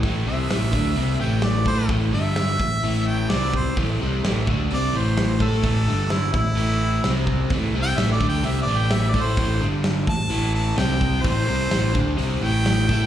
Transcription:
<<
  \new Staff \with { instrumentName = "Harmonica" } { \time 4/4 \key a \minor \tempo 4 = 128 r8 e''2 g''8 d''8 c''8 | r8 e''2 g''8 d''8 c''8 | r2 d''8 c''4 a'8~ | a'4 e'8 e'2 r8 |
\tuplet 3/2 { r4 g''8 e''8 d''8 g''8 e''8 d''8 g''8 e''8 d''8 c''8~ } | c''8 r4 a''4 a''8 g''4 | c''2 r8 g''4. | }
  \new Staff \with { instrumentName = "Overdriven electric guitar" } { \clef bass \time 4/4 \key a \minor <a, e a>8 <c g c'>8 <a, e a>8 <d a d'>8 <c g c'>8 <a, e a>4 <a e' a'>8 | <a, e a>8 <g, d g>4 <a, e>8 <a, e a>4 <c g c'>4 | <a, e a>8 <c g c'>8 <a, e a>8 <d a d'>8 <c g c'>8 <a, e a>4 <a e' a'>8 | <a, e a>8 <g, d g>4 <a, e>8 <a, e a>4 <c g c'>4 |
<a, e a>8 <c g c'>8 <a, e a>8 <d a d'>8 <c g c'>8 <a, e a>4 <a e' a'>8 | <a, e a>8 <g, d g>4 <a, e>8 <a, e a>4 <c g c'>4 | <a, e a>8 <c g c'>8 <a, e a>8 <d a d'>8 <c g c'>8 <a, e a>4 <a e' a'>8 | }
  \new Staff \with { instrumentName = "Fingered electric bass" } { \clef bass \time 4/4 \key a \minor a,,8 c,8 a,,8 d,8 c,8 a,,4 a,8 | a,,8 g,,4 a,,8 a,,4 c,4 | a,,8 c,8 a,,8 d,8 c,8 a,,4 a,8 | a,,8 g,,4 a,,8 a,,4 c,4 |
a,,8 c,8 a,,8 d,8 c,8 a,,4 a,8 | a,,8 g,,4 a,,8 a,,4 c,4 | a,,8 c,8 a,,8 d,8 c,8 a,,4 a,8 | }
  \new DrumStaff \with { instrumentName = "Drums" } \drummode { \time 4/4 <hho bd>4 <hho sn>8 <bd sn>8 hho4 <hho sn>8 bd8 | <hho bd>4 <hho sn>8 bd8 hho4 <hho sn>8 bd8 | <hho bd>4 <hho sn>8 bd8 hho4 <hho sn>8 bd8 | <hho bd>4 <hho sn>8 <bd sn>8 hho4 <hho sn>8 bd8 |
<hho bd>4 <hho sn>8 bd8 hho4 <hho sn>8 bd8 | <hho bd>4 <hho sn>8 bd8 hho4 <hho sn>8 bd8 | <hho bd>4 <hho sn>8 bd8 hho4 <hho sn>8 bd8 | }
>>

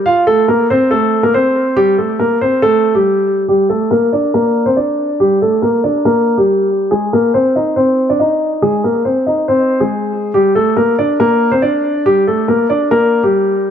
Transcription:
\new Staff \with { instrumentName = "Grand piano" } { \time 4/4 \key g \minor \tempo 4 = 140 <f' f''>8 <a a'>8 <bes bes'>8 <c' c''>8 <a a'>8. <bes bes'>16 <c' c''>4 | <g g'>8 <a a'>8 <bes bes'>8 <c' c''>8 <a a'>8. <g g'>4~ <g g'>16 | <g g'>8 <a a'>8 <bes bes'>8 <d' d''>8 <bes bes'>8. <c' c''>16 <d' d''>4 | <g g'>8 <a a'>8 <bes bes'>8 <d' d''>8 <bes bes'>8. <g g'>4~ <g g'>16 |
<aes aes'>8 <bes bes'>8 <c' c''>8 <ees' ees''>8 <c' c''>8. <d' d''>16 <ees' ees''>4 | <aes aes'>8 <bes bes'>8 <c' c''>8 <ees' ees''>8 <c' c''>8. <aes aes'>4~ <aes aes'>16 | <g g'>8 <a a'>8 <bes bes'>8 <d' d''>8 <bes bes'>8. <c' c''>16 <d' d''>4 | <g g'>8 <a a'>8 <bes bes'>8 <d' d''>8 <bes bes'>8. <g g'>4~ <g g'>16 | }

